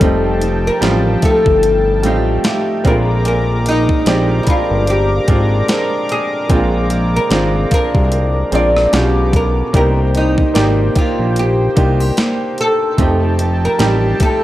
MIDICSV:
0, 0, Header, 1, 8, 480
1, 0, Start_track
1, 0, Tempo, 810811
1, 7, Time_signature, 4, 2, 24, 8
1, 8547, End_track
2, 0, Start_track
2, 0, Title_t, "Analog synth pad"
2, 0, Program_c, 0, 89
2, 4, Note_on_c, 0, 79, 75
2, 4, Note_on_c, 0, 81, 78
2, 1668, Note_off_c, 0, 81, 0
2, 1669, Note_off_c, 0, 79, 0
2, 1686, Note_on_c, 0, 70, 80
2, 1686, Note_on_c, 0, 82, 66
2, 1686, Note_on_c, 0, 86, 84
2, 5263, Note_off_c, 0, 70, 0
2, 5263, Note_off_c, 0, 86, 0
2, 5286, Note_on_c, 0, 86, 82
2, 5287, Note_on_c, 0, 59, 72
2, 5743, Note_off_c, 0, 82, 0
2, 5762, Note_off_c, 0, 59, 0
2, 5762, Note_off_c, 0, 86, 0
2, 5765, Note_on_c, 0, 72, 80
2, 5767, Note_on_c, 0, 79, 72
2, 7667, Note_off_c, 0, 72, 0
2, 7668, Note_off_c, 0, 79, 0
2, 7687, Note_on_c, 0, 81, 80
2, 7688, Note_on_c, 0, 79, 70
2, 8547, Note_off_c, 0, 79, 0
2, 8547, Note_off_c, 0, 81, 0
2, 8547, End_track
3, 0, Start_track
3, 0, Title_t, "Synth bell"
3, 0, Program_c, 1, 98
3, 0, Note_on_c, 1, 75, 78
3, 225, Note_off_c, 1, 75, 0
3, 1447, Note_on_c, 1, 77, 66
3, 1903, Note_off_c, 1, 77, 0
3, 2887, Note_on_c, 1, 72, 77
3, 3056, Note_on_c, 1, 77, 54
3, 3392, Note_off_c, 1, 72, 0
3, 3533, Note_off_c, 1, 77, 0
3, 4566, Note_on_c, 1, 77, 58
3, 5045, Note_on_c, 1, 82, 66
3, 5072, Note_off_c, 1, 77, 0
3, 5502, Note_off_c, 1, 82, 0
3, 7688, Note_on_c, 1, 81, 64
3, 8193, Note_off_c, 1, 81, 0
3, 8547, End_track
4, 0, Start_track
4, 0, Title_t, "Oud"
4, 0, Program_c, 2, 24
4, 0, Note_on_c, 2, 69, 93
4, 368, Note_off_c, 2, 69, 0
4, 398, Note_on_c, 2, 70, 100
4, 738, Note_off_c, 2, 70, 0
4, 740, Note_on_c, 2, 69, 100
4, 1217, Note_off_c, 2, 69, 0
4, 1219, Note_on_c, 2, 65, 93
4, 1456, Note_off_c, 2, 65, 0
4, 1458, Note_on_c, 2, 67, 88
4, 1676, Note_off_c, 2, 67, 0
4, 1701, Note_on_c, 2, 70, 96
4, 1933, Note_off_c, 2, 70, 0
4, 1940, Note_on_c, 2, 70, 96
4, 2181, Note_off_c, 2, 70, 0
4, 2182, Note_on_c, 2, 63, 98
4, 2596, Note_off_c, 2, 63, 0
4, 2624, Note_on_c, 2, 64, 63
4, 2653, Note_off_c, 2, 64, 0
4, 2662, Note_on_c, 2, 65, 90
4, 2899, Note_off_c, 2, 65, 0
4, 2901, Note_on_c, 2, 67, 102
4, 3618, Note_off_c, 2, 67, 0
4, 3621, Note_on_c, 2, 68, 103
4, 4239, Note_off_c, 2, 68, 0
4, 4241, Note_on_c, 2, 70, 105
4, 4574, Note_off_c, 2, 70, 0
4, 4581, Note_on_c, 2, 70, 107
4, 5059, Note_off_c, 2, 70, 0
4, 5061, Note_on_c, 2, 74, 102
4, 5301, Note_off_c, 2, 74, 0
4, 5301, Note_on_c, 2, 67, 101
4, 5518, Note_off_c, 2, 67, 0
4, 5542, Note_on_c, 2, 70, 99
4, 5774, Note_off_c, 2, 70, 0
4, 5781, Note_on_c, 2, 70, 97
4, 6021, Note_off_c, 2, 70, 0
4, 6022, Note_on_c, 2, 63, 97
4, 6471, Note_off_c, 2, 63, 0
4, 6503, Note_on_c, 2, 65, 87
4, 6742, Note_off_c, 2, 65, 0
4, 6745, Note_on_c, 2, 67, 104
4, 7461, Note_off_c, 2, 67, 0
4, 7463, Note_on_c, 2, 69, 102
4, 8078, Note_off_c, 2, 69, 0
4, 8080, Note_on_c, 2, 70, 101
4, 8420, Note_off_c, 2, 70, 0
4, 8422, Note_on_c, 2, 69, 96
4, 8547, Note_off_c, 2, 69, 0
4, 8547, End_track
5, 0, Start_track
5, 0, Title_t, "Grand piano"
5, 0, Program_c, 3, 0
5, 0, Control_c, 3, 64, 127
5, 0, Note_on_c, 3, 55, 74
5, 4, Note_on_c, 3, 57, 64
5, 9, Note_on_c, 3, 60, 70
5, 13, Control_c, 3, 64, 0
5, 14, Note_on_c, 3, 63, 82
5, 123, Control_c, 3, 64, 127
5, 317, Note_off_c, 3, 55, 0
5, 319, Note_off_c, 3, 57, 0
5, 322, Note_off_c, 3, 60, 0
5, 324, Note_off_c, 3, 63, 0
5, 478, Note_on_c, 3, 55, 80
5, 483, Note_on_c, 3, 53, 68
5, 488, Note_on_c, 3, 60, 69
5, 493, Note_on_c, 3, 65, 88
5, 942, Note_off_c, 3, 55, 0
5, 944, Note_off_c, 3, 53, 0
5, 947, Note_off_c, 3, 60, 0
5, 949, Note_off_c, 3, 65, 0
5, 1200, Note_on_c, 3, 55, 66
5, 1205, Note_on_c, 3, 57, 67
5, 1210, Note_on_c, 3, 60, 64
5, 1215, Note_on_c, 3, 63, 82
5, 1662, Note_off_c, 3, 55, 0
5, 1665, Note_off_c, 3, 57, 0
5, 1668, Note_off_c, 3, 60, 0
5, 1670, Note_off_c, 3, 63, 0
5, 1680, Note_on_c, 3, 56, 81
5, 1685, Note_on_c, 3, 60, 71
5, 1690, Note_on_c, 3, 62, 72
5, 1694, Control_c, 3, 64, 0
5, 1695, Note_on_c, 3, 65, 87
5, 1787, Control_c, 3, 64, 127
5, 2275, Note_off_c, 3, 56, 0
5, 2277, Note_off_c, 3, 60, 0
5, 2280, Note_off_c, 3, 62, 0
5, 2283, Note_off_c, 3, 65, 0
5, 2401, Note_on_c, 3, 56, 80
5, 2406, Note_on_c, 3, 60, 70
5, 2411, Note_on_c, 3, 74, 72
5, 2416, Note_on_c, 3, 67, 86
5, 2863, Note_off_c, 3, 56, 0
5, 2866, Note_off_c, 3, 60, 0
5, 2868, Note_off_c, 3, 74, 0
5, 2871, Note_off_c, 3, 67, 0
5, 3121, Note_on_c, 3, 56, 73
5, 3126, Note_on_c, 3, 60, 65
5, 3130, Note_on_c, 3, 62, 66
5, 3135, Note_on_c, 3, 65, 77
5, 3583, Note_off_c, 3, 56, 0
5, 3586, Note_off_c, 3, 60, 0
5, 3588, Note_off_c, 3, 62, 0
5, 3590, Note_off_c, 3, 65, 0
5, 3841, Note_on_c, 3, 56, 74
5, 3846, Note_on_c, 3, 60, 66
5, 3851, Note_on_c, 3, 62, 64
5, 3855, Note_on_c, 3, 65, 85
5, 4158, Note_off_c, 3, 56, 0
5, 4160, Note_off_c, 3, 60, 0
5, 4163, Note_off_c, 3, 62, 0
5, 4165, Note_off_c, 3, 65, 0
5, 4319, Note_on_c, 3, 56, 78
5, 4326, Note_on_c, 3, 60, 71
5, 4331, Note_on_c, 3, 62, 70
5, 4335, Note_on_c, 3, 65, 84
5, 4782, Note_off_c, 3, 56, 0
5, 4785, Note_off_c, 3, 60, 0
5, 4788, Note_off_c, 3, 62, 0
5, 4790, Note_off_c, 3, 65, 0
5, 5038, Note_on_c, 3, 56, 71
5, 5044, Note_on_c, 3, 60, 66
5, 5049, Note_on_c, 3, 62, 62
5, 5054, Note_on_c, 3, 65, 76
5, 5268, Note_off_c, 3, 56, 0
5, 5277, Note_on_c, 3, 56, 74
5, 5279, Note_off_c, 3, 62, 0
5, 5283, Note_on_c, 3, 61, 71
5, 5284, Note_off_c, 3, 65, 0
5, 5286, Note_off_c, 3, 60, 0
5, 5287, Note_on_c, 3, 62, 72
5, 5293, Note_on_c, 3, 65, 85
5, 5295, Control_c, 3, 64, 0
5, 5391, Control_c, 3, 64, 127
5, 5681, Note_off_c, 3, 56, 0
5, 5684, Note_off_c, 3, 61, 0
5, 5687, Note_off_c, 3, 62, 0
5, 5689, Note_off_c, 3, 65, 0
5, 5760, Note_on_c, 3, 58, 73
5, 5765, Note_on_c, 3, 62, 64
5, 5771, Note_on_c, 3, 63, 66
5, 5775, Note_on_c, 3, 67, 79
5, 5776, Control_c, 3, 64, 0
5, 5872, Control_c, 3, 64, 127
5, 6077, Note_off_c, 3, 58, 0
5, 6080, Note_off_c, 3, 62, 0
5, 6083, Note_off_c, 3, 63, 0
5, 6085, Note_off_c, 3, 67, 0
5, 6239, Note_on_c, 3, 58, 73
5, 6245, Note_on_c, 3, 74, 68
5, 6249, Note_on_c, 3, 63, 72
5, 6254, Note_on_c, 3, 67, 80
5, 6702, Note_off_c, 3, 58, 0
5, 6705, Note_off_c, 3, 74, 0
5, 6707, Note_off_c, 3, 63, 0
5, 6710, Note_off_c, 3, 67, 0
5, 6961, Note_on_c, 3, 58, 70
5, 6966, Note_on_c, 3, 62, 67
5, 6971, Note_on_c, 3, 63, 63
5, 6975, Note_on_c, 3, 67, 77
5, 7423, Note_off_c, 3, 58, 0
5, 7426, Note_off_c, 3, 62, 0
5, 7428, Note_off_c, 3, 63, 0
5, 7430, Note_off_c, 3, 67, 0
5, 7682, Note_on_c, 3, 57, 70
5, 7687, Note_on_c, 3, 60, 63
5, 7692, Note_on_c, 3, 63, 70
5, 7694, Control_c, 3, 64, 0
5, 7697, Note_on_c, 3, 67, 80
5, 7793, Control_c, 3, 64, 127
5, 7998, Note_off_c, 3, 57, 0
5, 8000, Note_off_c, 3, 60, 0
5, 8003, Note_off_c, 3, 63, 0
5, 8006, Note_off_c, 3, 67, 0
5, 8162, Note_on_c, 3, 55, 81
5, 8166, Note_on_c, 3, 60, 68
5, 8171, Note_on_c, 3, 63, 70
5, 8176, Note_on_c, 3, 67, 87
5, 8547, Note_off_c, 3, 55, 0
5, 8547, Note_off_c, 3, 60, 0
5, 8547, Note_off_c, 3, 63, 0
5, 8547, Note_off_c, 3, 67, 0
5, 8547, End_track
6, 0, Start_track
6, 0, Title_t, "Steel-string acoustic guitar"
6, 0, Program_c, 4, 25
6, 0, Note_on_c, 4, 58, 66
6, 0, Note_on_c, 4, 63, 67
6, 0, Note_on_c, 4, 67, 70
6, 6, Note_on_c, 4, 53, 85
6, 62, Note_off_c, 4, 58, 0
6, 244, Note_off_c, 4, 63, 0
6, 247, Note_on_c, 4, 63, 62
6, 721, Note_off_c, 4, 63, 0
6, 725, Note_on_c, 4, 57, 64
6, 728, Note_on_c, 4, 63, 63
6, 730, Note_off_c, 4, 67, 0
6, 733, Note_on_c, 4, 67, 67
6, 1199, Note_off_c, 4, 67, 0
6, 1206, Note_on_c, 4, 67, 62
6, 1440, Note_off_c, 4, 57, 0
6, 1443, Note_off_c, 4, 63, 0
6, 1446, Note_off_c, 4, 67, 0
6, 1447, Note_on_c, 4, 57, 64
6, 1450, Note_on_c, 4, 63, 62
6, 1454, Note_on_c, 4, 67, 69
6, 1686, Note_on_c, 4, 46, 82
6, 1743, Note_off_c, 4, 57, 0
6, 1744, Note_off_c, 4, 63, 0
6, 1746, Note_off_c, 4, 67, 0
6, 1918, Note_off_c, 4, 46, 0
6, 1926, Note_on_c, 4, 46, 91
6, 2078, Note_off_c, 4, 53, 0
6, 2165, Note_on_c, 4, 56, 63
6, 2406, Note_on_c, 4, 53, 67
6, 2644, Note_off_c, 4, 53, 0
6, 2646, Note_on_c, 4, 53, 62
6, 2647, Note_off_c, 4, 56, 0
6, 2649, Note_on_c, 4, 56, 64
6, 2653, Note_on_c, 4, 62, 70
6, 3124, Note_off_c, 4, 62, 0
6, 3127, Note_on_c, 4, 62, 67
6, 3363, Note_off_c, 4, 53, 0
6, 3365, Note_on_c, 4, 53, 66
6, 3367, Note_off_c, 4, 56, 0
6, 3370, Note_off_c, 4, 62, 0
6, 3370, Note_on_c, 4, 56, 66
6, 3372, Note_on_c, 4, 62, 70
6, 3839, Note_off_c, 4, 46, 0
6, 3846, Note_on_c, 4, 46, 80
6, 4083, Note_off_c, 4, 56, 0
6, 4086, Note_on_c, 4, 56, 66
6, 4323, Note_off_c, 4, 53, 0
6, 4325, Note_on_c, 4, 53, 65
6, 4563, Note_off_c, 4, 53, 0
6, 4565, Note_on_c, 4, 53, 60
6, 4566, Note_off_c, 4, 56, 0
6, 4568, Note_on_c, 4, 56, 64
6, 4570, Note_off_c, 4, 62, 0
6, 4572, Note_on_c, 4, 62, 70
6, 5038, Note_off_c, 4, 62, 0
6, 5045, Note_on_c, 4, 62, 70
6, 5284, Note_off_c, 4, 46, 0
6, 5286, Note_on_c, 4, 47, 80
6, 5342, Note_off_c, 4, 53, 0
6, 5342, Note_off_c, 4, 62, 0
6, 5343, Note_off_c, 4, 56, 0
6, 5763, Note_off_c, 4, 47, 0
6, 5765, Note_on_c, 4, 48, 90
6, 6007, Note_on_c, 4, 63, 62
6, 6245, Note_on_c, 4, 58, 68
6, 6479, Note_off_c, 4, 58, 0
6, 6486, Note_off_c, 4, 63, 0
6, 6486, Note_on_c, 4, 58, 63
6, 6489, Note_on_c, 4, 63, 63
6, 6493, Note_on_c, 4, 67, 71
6, 6965, Note_off_c, 4, 67, 0
6, 6967, Note_on_c, 4, 65, 62
6, 7105, Note_off_c, 4, 65, 0
6, 7105, Note_on_c, 4, 67, 61
6, 7199, Note_off_c, 4, 58, 0
6, 7207, Note_off_c, 4, 67, 0
6, 7207, Note_on_c, 4, 58, 63
6, 7208, Note_off_c, 4, 63, 0
6, 7210, Note_on_c, 4, 63, 65
6, 7214, Note_on_c, 4, 67, 67
6, 7686, Note_off_c, 4, 48, 0
6, 7686, Note_on_c, 4, 53, 88
6, 7742, Note_off_c, 4, 58, 0
6, 7923, Note_off_c, 4, 63, 0
6, 7925, Note_on_c, 4, 63, 62
6, 8401, Note_off_c, 4, 63, 0
6, 8405, Note_on_c, 4, 57, 63
6, 8408, Note_on_c, 4, 63, 62
6, 8410, Note_off_c, 4, 67, 0
6, 8412, Note_on_c, 4, 67, 70
6, 8547, Note_off_c, 4, 53, 0
6, 8547, Note_off_c, 4, 57, 0
6, 8547, Note_off_c, 4, 63, 0
6, 8547, Note_off_c, 4, 67, 0
6, 8547, End_track
7, 0, Start_track
7, 0, Title_t, "Analog synth bass"
7, 0, Program_c, 5, 38
7, 6, Note_on_c, 5, 29, 100
7, 421, Note_off_c, 5, 29, 0
7, 487, Note_on_c, 5, 33, 91
7, 694, Note_off_c, 5, 33, 0
7, 864, Note_on_c, 5, 31, 94
7, 1207, Note_on_c, 5, 33, 96
7, 1216, Note_off_c, 5, 31, 0
7, 1414, Note_off_c, 5, 33, 0
7, 1685, Note_on_c, 5, 34, 99
7, 2308, Note_off_c, 5, 34, 0
7, 2407, Note_on_c, 5, 34, 96
7, 2614, Note_off_c, 5, 34, 0
7, 2787, Note_on_c, 5, 31, 88
7, 3081, Note_off_c, 5, 31, 0
7, 3127, Note_on_c, 5, 32, 93
7, 3334, Note_off_c, 5, 32, 0
7, 3846, Note_on_c, 5, 34, 108
7, 4261, Note_off_c, 5, 34, 0
7, 4327, Note_on_c, 5, 32, 96
7, 4534, Note_off_c, 5, 32, 0
7, 4704, Note_on_c, 5, 36, 95
7, 4999, Note_off_c, 5, 36, 0
7, 5046, Note_on_c, 5, 34, 96
7, 5254, Note_off_c, 5, 34, 0
7, 5288, Note_on_c, 5, 35, 108
7, 5702, Note_off_c, 5, 35, 0
7, 5766, Note_on_c, 5, 36, 121
7, 6181, Note_off_c, 5, 36, 0
7, 6248, Note_on_c, 5, 32, 94
7, 6455, Note_off_c, 5, 32, 0
7, 6626, Note_on_c, 5, 34, 84
7, 6920, Note_off_c, 5, 34, 0
7, 6967, Note_on_c, 5, 36, 93
7, 7175, Note_off_c, 5, 36, 0
7, 7686, Note_on_c, 5, 29, 110
7, 8101, Note_off_c, 5, 29, 0
7, 8168, Note_on_c, 5, 33, 96
7, 8375, Note_off_c, 5, 33, 0
7, 8547, End_track
8, 0, Start_track
8, 0, Title_t, "Drums"
8, 6, Note_on_c, 9, 36, 113
8, 6, Note_on_c, 9, 42, 64
8, 65, Note_off_c, 9, 36, 0
8, 65, Note_off_c, 9, 42, 0
8, 246, Note_on_c, 9, 42, 67
8, 305, Note_off_c, 9, 42, 0
8, 485, Note_on_c, 9, 42, 74
8, 490, Note_on_c, 9, 38, 114
8, 544, Note_off_c, 9, 42, 0
8, 550, Note_off_c, 9, 38, 0
8, 724, Note_on_c, 9, 42, 66
8, 728, Note_on_c, 9, 36, 100
8, 783, Note_off_c, 9, 42, 0
8, 787, Note_off_c, 9, 36, 0
8, 864, Note_on_c, 9, 36, 95
8, 923, Note_off_c, 9, 36, 0
8, 965, Note_on_c, 9, 42, 74
8, 1024, Note_off_c, 9, 42, 0
8, 1205, Note_on_c, 9, 42, 69
8, 1264, Note_off_c, 9, 42, 0
8, 1444, Note_on_c, 9, 42, 63
8, 1448, Note_on_c, 9, 38, 119
8, 1504, Note_off_c, 9, 42, 0
8, 1508, Note_off_c, 9, 38, 0
8, 1685, Note_on_c, 9, 42, 54
8, 1686, Note_on_c, 9, 36, 107
8, 1744, Note_off_c, 9, 42, 0
8, 1745, Note_off_c, 9, 36, 0
8, 1925, Note_on_c, 9, 42, 69
8, 1984, Note_off_c, 9, 42, 0
8, 2166, Note_on_c, 9, 42, 70
8, 2225, Note_off_c, 9, 42, 0
8, 2303, Note_on_c, 9, 36, 85
8, 2362, Note_off_c, 9, 36, 0
8, 2405, Note_on_c, 9, 42, 70
8, 2410, Note_on_c, 9, 38, 118
8, 2464, Note_off_c, 9, 42, 0
8, 2469, Note_off_c, 9, 38, 0
8, 2644, Note_on_c, 9, 42, 69
8, 2648, Note_on_c, 9, 36, 97
8, 2704, Note_off_c, 9, 42, 0
8, 2707, Note_off_c, 9, 36, 0
8, 2885, Note_on_c, 9, 42, 70
8, 2944, Note_off_c, 9, 42, 0
8, 3124, Note_on_c, 9, 42, 66
8, 3127, Note_on_c, 9, 36, 98
8, 3184, Note_off_c, 9, 42, 0
8, 3186, Note_off_c, 9, 36, 0
8, 3365, Note_on_c, 9, 42, 62
8, 3369, Note_on_c, 9, 38, 119
8, 3424, Note_off_c, 9, 42, 0
8, 3428, Note_off_c, 9, 38, 0
8, 3607, Note_on_c, 9, 42, 56
8, 3666, Note_off_c, 9, 42, 0
8, 3846, Note_on_c, 9, 36, 112
8, 3846, Note_on_c, 9, 42, 65
8, 3905, Note_off_c, 9, 36, 0
8, 3905, Note_off_c, 9, 42, 0
8, 4085, Note_on_c, 9, 42, 70
8, 4145, Note_off_c, 9, 42, 0
8, 4325, Note_on_c, 9, 42, 73
8, 4330, Note_on_c, 9, 38, 113
8, 4384, Note_off_c, 9, 42, 0
8, 4390, Note_off_c, 9, 38, 0
8, 4565, Note_on_c, 9, 42, 65
8, 4568, Note_on_c, 9, 36, 99
8, 4624, Note_off_c, 9, 42, 0
8, 4627, Note_off_c, 9, 36, 0
8, 4705, Note_on_c, 9, 36, 94
8, 4764, Note_off_c, 9, 36, 0
8, 4805, Note_on_c, 9, 42, 66
8, 4865, Note_off_c, 9, 42, 0
8, 5045, Note_on_c, 9, 42, 70
8, 5104, Note_off_c, 9, 42, 0
8, 5189, Note_on_c, 9, 37, 93
8, 5248, Note_off_c, 9, 37, 0
8, 5286, Note_on_c, 9, 42, 64
8, 5290, Note_on_c, 9, 38, 116
8, 5345, Note_off_c, 9, 42, 0
8, 5349, Note_off_c, 9, 38, 0
8, 5525, Note_on_c, 9, 36, 98
8, 5527, Note_on_c, 9, 42, 55
8, 5584, Note_off_c, 9, 36, 0
8, 5586, Note_off_c, 9, 42, 0
8, 5766, Note_on_c, 9, 36, 116
8, 5766, Note_on_c, 9, 42, 68
8, 5825, Note_off_c, 9, 36, 0
8, 5825, Note_off_c, 9, 42, 0
8, 6007, Note_on_c, 9, 42, 70
8, 6066, Note_off_c, 9, 42, 0
8, 6144, Note_on_c, 9, 36, 84
8, 6203, Note_off_c, 9, 36, 0
8, 6246, Note_on_c, 9, 42, 74
8, 6252, Note_on_c, 9, 38, 120
8, 6305, Note_off_c, 9, 42, 0
8, 6311, Note_off_c, 9, 38, 0
8, 6485, Note_on_c, 9, 42, 67
8, 6488, Note_on_c, 9, 36, 100
8, 6545, Note_off_c, 9, 42, 0
8, 6548, Note_off_c, 9, 36, 0
8, 6726, Note_on_c, 9, 42, 67
8, 6785, Note_off_c, 9, 42, 0
8, 6966, Note_on_c, 9, 42, 72
8, 6967, Note_on_c, 9, 36, 98
8, 7025, Note_off_c, 9, 42, 0
8, 7027, Note_off_c, 9, 36, 0
8, 7206, Note_on_c, 9, 42, 64
8, 7210, Note_on_c, 9, 38, 114
8, 7265, Note_off_c, 9, 42, 0
8, 7269, Note_off_c, 9, 38, 0
8, 7447, Note_on_c, 9, 42, 53
8, 7506, Note_off_c, 9, 42, 0
8, 7686, Note_on_c, 9, 36, 109
8, 7686, Note_on_c, 9, 42, 67
8, 7745, Note_off_c, 9, 36, 0
8, 7745, Note_off_c, 9, 42, 0
8, 7927, Note_on_c, 9, 42, 72
8, 7986, Note_off_c, 9, 42, 0
8, 8166, Note_on_c, 9, 42, 74
8, 8171, Note_on_c, 9, 38, 117
8, 8225, Note_off_c, 9, 42, 0
8, 8230, Note_off_c, 9, 38, 0
8, 8406, Note_on_c, 9, 42, 66
8, 8409, Note_on_c, 9, 36, 96
8, 8465, Note_off_c, 9, 42, 0
8, 8468, Note_off_c, 9, 36, 0
8, 8547, End_track
0, 0, End_of_file